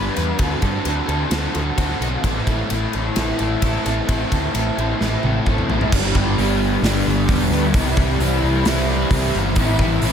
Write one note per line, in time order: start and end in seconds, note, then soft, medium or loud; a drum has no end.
0.00 0.37 G3 medium
0.00 0.16 B3 medium
0.00 0.17 D4 medium
0.00 0.14 B4 medium
0.16 0.32 E2 medium
0.16 0.38 B3 medium
0.16 0.38 D4 medium
0.16 0.37 B4 medium
0.16 snare soft
0.16 ride medium
0.39 0.54 D2 medium
0.39 0.82 D3 medium
0.39 0.63 C4 medium
0.39 0.61 F#4 medium
0.39 0.60 A4 loud
0.39 kick loud
0.39 ride medium
0.61 0.77 G2 medium
0.61 0.84 C4 medium
0.61 0.84 F#4 medium
0.61 0.86 A4 medium
0.61 kick medium
0.61 ride medium
0.84 1.00 D2 medium
0.84 1.29 D3 medium
0.84 1.08 C4 medium
0.84 1.06 F#4 medium
0.84 1.06 A4 medium
0.84 ride medium
1.06 1.23 D2 medium
1.06 1.30 C4 medium
1.06 1.31 F#4 medium
1.06 1.32 A4 medium
1.06 ride medium
1.30 1.46 D2 medium
1.30 1.76 D3 medium
1.30 1.55 C4 medium
1.30 1.53 F#4 loud
1.30 1.52 A4 loud
1.30 snare loud
1.30 ride medium
1.53 1.70 D2 medium
1.53 1.77 C4 medium
1.53 1.77 F#4 medium
1.53 1.79 A4 medium
1.53 ride medium
1.77 1.93 D2 medium
1.77 2.22 D3 medium
1.77 2.02 C4 medium
1.77 2.00 F#4 medium
1.77 1.99 A4 medium
1.77 kick medium
1.77 ride medium
2.00 2.15 B1 medium
2.00 2.24 C4 medium
2.00 2.23 F#4 medium
2.00 2.25 A4 medium
2.00 ride medium
2.23 2.39 A1 medium
2.23 3.16 A2 medium
2.23 2.70 A3 medium
2.23 2.49 C4 medium
2.23 2.48 E4 medium
2.23 2.47 A4 loud
2.23 kick loud
2.23 ride medium
2.47 2.62 A1 medium
2.47 2.71 C4 medium
2.47 2.72 E4 medium
2.47 2.73 A4 medium
2.47 kick medium
2.47 ride medium
2.70 2.85 A1 medium
2.70 3.17 A3 medium
2.70 2.96 C4 medium
2.70 2.95 E4 medium
2.70 2.93 A4 medium
2.70 ride medium
2.93 3.09 A1 medium
2.93 3.16 C4 medium
2.93 3.17 E4 medium
2.93 3.18 A4 medium
2.93 ride medium
3.16 3.31 A1 medium
3.16 3.62 A2 medium
3.16 3.62 A3 loud
3.16 3.41 C4 loud
3.16 3.40 E4 loud
3.16 3.39 A4 medium
3.16 snare loud
3.16 ride medium
3.39 3.55 A1 medium
3.39 3.62 C4 medium
3.39 3.63 E4 medium
3.39 3.64 A4 medium
3.39 ride medium
3.62 3.77 A1 medium
3.62 4.07 A3 medium
3.62 3.86 C4 medium
3.62 3.85 E4 medium
3.62 3.84 A4 medium
3.62 kick medium
3.62 ride medium
3.85 4.00 A1 medium
3.85 4.07 C4 medium
3.85 4.08 E4 medium
3.85 4.09 A4 medium
3.85 snare soft
3.85 ride medium
4.08 4.23 A1 medium
4.08 4.54 A2 medium
4.08 4.52 A3 medium
4.08 4.31 C4 medium
4.08 4.30 E4 medium
4.08 4.29 A4 medium
4.08 kick loud
4.08 ride medium
4.30 4.47 D2 medium
4.30 4.53 C4 medium
4.30 4.54 E4 medium
4.30 4.54 A4 medium
4.30 kick medium
4.30 ride medium
4.53 4.69 A1 medium
4.53 5.00 A3 medium
4.53 4.78 C4 medium
4.53 4.77 E4 medium
4.53 4.76 A4 medium
4.53 ride medium
4.77 4.92 A1 medium
4.77 5.01 C4 medium
4.77 5.01 E4 medium
4.77 5.01 A4 medium
4.77 ride medium
5.00 5.15 A1 medium
5.00 5.46 A2 medium
5.00 5.45 A3 medium
5.00 5.25 C4 medium
5.00 5.24 E4 medium
5.00 5.22 A4 medium
5.00 snare medium
5.23 5.38 A1 medium
5.23 5.46 C4 soft
5.23 5.47 E4 medium
5.23 5.47 A4 medium
5.23 high tom medium
5.46 5.61 A1 medium
5.46 5.91 A3 medium
5.46 5.70 C4 medium
5.46 5.70 E4 medium
5.46 5.67 A4 medium
5.46 kick medium
5.46 mid tom medium
5.58 mid tom medium
5.68 5.83 A1 medium
5.68 5.92 C4 medium
5.68 5.92 E4 medium
5.68 5.90 A4 medium
5.68 floor tom medium
5.81 floor tom medium
5.92 6.12 G1 loud
5.92 6.38 G2 loud
5.92 6.38 D3 medium
5.92 6.17 G3 loud
5.92 6.15 B3 loud
5.92 6.15 D4 loud
5.92 6.15 G4 loud
5.92 kick loud
5.92 crash loud
6.15 6.34 G1 medium
6.15 6.37 G3 medium
6.15 6.37 B3 medium
6.15 6.37 D4 medium
6.15 6.39 G4 medium
6.15 kick medium
6.37 6.76 G1 loud
6.37 6.83 G3 medium
6.37 6.83 B3 medium
6.37 6.83 D4 medium
6.37 6.84 G4 medium
6.37 open hi-hat medium
6.82 7.02 G1 loud
6.82 7.51 G2 loud
6.82 7.51 D3 loud
6.82 7.28 G3 loud
6.82 7.28 B3 loud
6.82 7.29 D4 loud
6.82 7.30 G4 loud
6.82 snare loud
6.82 open hi-hat medium
7.06 7.26 G1 medium
7.28 7.48 E1 medium
7.28 7.74 G3 medium
7.28 7.73 B3 medium
7.28 7.74 D4 medium
7.28 7.75 G4 medium
7.28 kick medium
7.28 open hi-hat medium
7.51 7.70 D2 medium
7.51 snare soft
7.74 7.94 C2 medium
7.74 8.20 C3 loud
7.74 8.19 E3 loud
7.74 7.99 G3 loud
7.74 7.98 C4 loud
7.74 7.96 E4 loud
7.74 kick loud
7.74 open hi-hat medium
7.97 8.16 C2 medium
7.97 8.20 G3 medium
7.97 8.20 C4 medium
7.97 8.21 E4 medium
7.97 kick medium
8.19 8.39 C2 loud
8.19 8.64 E3 medium
8.19 8.65 G3 medium
8.19 8.65 C4 medium
8.19 8.67 E4 medium
8.19 open hi-hat medium
8.43 8.62 C2 loud
8.64 9.04 C2 loud
8.64 9.33 C3 loud
8.64 9.09 E3 loud
8.64 9.10 G3 loud
8.64 9.10 C4 loud
8.64 9.12 E4 loud
8.64 snare loud
8.64 open hi-hat medium
9.10 9.30 C2 medium
9.10 9.56 E3 medium
9.10 9.55 G3 medium
9.10 9.55 C4 medium
9.10 9.57 E4 medium
9.10 kick medium
9.10 open hi-hat medium
9.34 9.53 G1 loud
9.34 snare soft
9.55 9.76 A1 loud
9.55 10.01 A2 loud
9.55 10.01 E3 loud
9.55 9.82 A3 loud
9.55 9.79 C4 loud
9.55 9.79 E4 loud
9.55 kick loud
9.55 open hi-hat medium
9.79 9.98 A1 medium
9.79 10.03 A3 medium
9.79 10.02 C4 medium
9.79 10.04 E4 medium
9.79 kick medium
10.02 10.12 A1 medium
10.02 10.12 E3 medium
10.02 10.12 A3 medium
10.02 10.12 C4 medium
10.02 10.12 E4 medium
10.02 open hi-hat medium